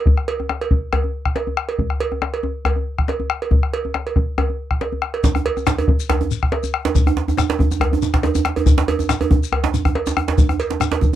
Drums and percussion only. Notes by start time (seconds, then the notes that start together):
0.06 bombo low, djembe slap, djembe tone, djembe bass
0.17 bombo rim
0.28 cowbell
0.40 bombo rim, djembe tone
0.49 bombo rim, djembe slap
0.61 cowbell
0.71 bombo low, djembe tone
0.93 bombo rim, cowbell, djembe slap, djembe bass
1.04 djembe tone
1.25 bombo rim, bombo low, djembe slap
1.36 cowbell, djembe slap
1.47 djembe slap, djembe tone
1.57 bombo rim
1.69 cowbell
1.79 bombo low, djembe slap, djembe tone, djembe bass
1.90 bombo rim
2.00 cowbell
2.12 bombo rim, djembe tone
2.22 bombo rim, djembe slap
2.34 cowbell
2.43 djembe tone
2.65 bombo rim, cowbell, djembe slap, djembe bass
2.76 djembe tone
2.98 bombo rim, bombo low, djembe slap
3.08 cowbell, djembe slap
3.20 djembe slap, djembe tone
3.30 bombo rim
3.42 cowbell
3.51 bombo low, djembe tone, djembe bass
3.63 bombo rim
3.74 cowbell
3.85 djembe tone
3.94 bombo rim, djembe slap
4.07 cowbell
4.16 bombo rim, bombo low, djembe slap, djembe tone
4.38 bombo rim, cowbell, djembe bass
4.50 djembe slap, djembe tone
4.71 bombo rim, bombo low
4.81 cowbell, djembe slap
4.92 djembe slap, djembe tone
5.02 bombo rim, djembe slap
5.14 cowbell, djembe slap
5.24 bombo low, djembe slap, djembe tone, djembe bass, shekere
5.35 bombo rim, djembe tone
5.46 cowbell
5.57 bombo rim, djembe tone, shekere
5.67 bombo rim, djembe slap, shekere
5.78 cowbell, djembe tone
5.88 bombo low, djembe tone
6.00 shekere
6.09 bombo rim, cowbell, djembe slap, djembe bass
6.21 djembe tone
6.31 shekere
6.43 bombo rim, bombo low, djembe slap
6.52 cowbell, djembe slap
6.63 djembe slap, djembe tone, shekere
6.74 bombo rim
6.85 cowbell, djembe slap
6.95 bombo low, djembe slap, djembe tone, djembe bass, shekere
7.07 bombo rim, djembe tone
7.17 djembe slap
7.28 bombo rim, djembe tone, shekere
7.37 bombo rim, djembe slap, djembe tone, shekere
7.50 cowbell, djembe slap
7.59 bombo low, djembe tone
7.71 djembe tone, shekere
7.80 bombo rim, cowbell, djembe slap, djembe bass
7.91 djembe tone
7.93 djembe tone
8.02 djembe tone, shekere
8.14 bombo rim, bombo low, djembe slap
8.23 cowbell, djembe slap, djembe tone
8.35 djembe slap, djembe tone, shekere
8.45 bombo rim, djembe slap
8.56 cowbell, djembe tone
8.66 bombo low, djembe slap, djembe tone, djembe bass, shekere
8.78 bombo rim, djembe slap
8.88 cowbell, djembe tone
8.99 djembe tone, shekere
9.09 bombo rim, djembe slap, shekere
9.21 cowbell, djembe tone
9.31 bombo low, djembe tone
9.43 shekere
9.52 bombo rim, cowbell, djembe slap, djembe bass
9.64 djembe slap, djembe tone
9.74 djembe tone, shekere
9.85 bombo rim, bombo low, djembe tone
9.95 cowbell, djembe slap
10.06 djembe slap, djembe tone, shekere
10.17 bombo rim, djembe tone
10.28 cowbell, djembe slap
10.38 bombo low, djembe slap, djembe tone, djembe bass, shekere
10.49 bombo rim, djembe tone
10.60 cowbell, shekere
10.70 bombo rim, djembe slap, djembe tone
10.80 bombo rim, djembe slap, djembe tone, shekere
10.92 cowbell, djembe slap
11.01 bombo low, djembe tone, shekere